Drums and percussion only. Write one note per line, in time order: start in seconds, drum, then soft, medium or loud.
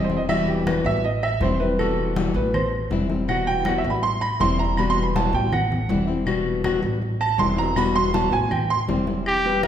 0.10 high conga medium
0.29 high conga soft
0.29 claves medium
0.48 high conga soft
0.67 high conga loud
0.67 claves medium
0.85 high conga soft
1.04 high conga soft
1.23 high conga soft
1.23 claves medium
1.41 high conga medium
1.60 high conga soft
1.79 high conga soft
1.79 claves medium
1.98 high conga soft
2.16 high conga loud
2.35 high conga soft
2.54 high conga soft
2.54 low conga medium
2.54 claves medium
2.73 high conga soft
2.91 high conga medium
3.10 high conga medium
3.29 high conga soft
3.29 claves medium
3.47 high conga soft
3.65 high conga medium
3.65 claves medium
3.84 high conga soft
4.03 high conga soft
4.22 high conga soft
4.22 claves medium
4.40 high conga medium
4.59 high conga soft
4.77 high conga soft
4.77 claves medium
4.97 high conga soft
5.16 high conga medium
5.34 high conga soft
5.52 high conga soft
5.52 low conga medium
5.52 claves medium
5.72 high conga soft
5.72 low conga medium
5.90 high conga medium
6.27 high conga soft
6.27 claves medium
6.46 high conga soft
6.64 high conga medium
6.64 claves medium
6.84 high conga soft
7.02 high conga soft
7.21 high conga soft
7.21 claves medium
7.39 high conga medium
7.58 high conga soft
7.76 high conga soft
7.76 claves medium
7.96 high conga soft
8.14 high conga medium
8.33 high conga soft
8.51 high conga soft
8.51 low conga medium
8.51 claves medium
8.70 high conga soft
8.89 high conga medium
9.07 high conga medium
9.26 high conga soft
9.26 claves medium
9.45 high conga soft
9.63 high conga loud
9.63 claves medium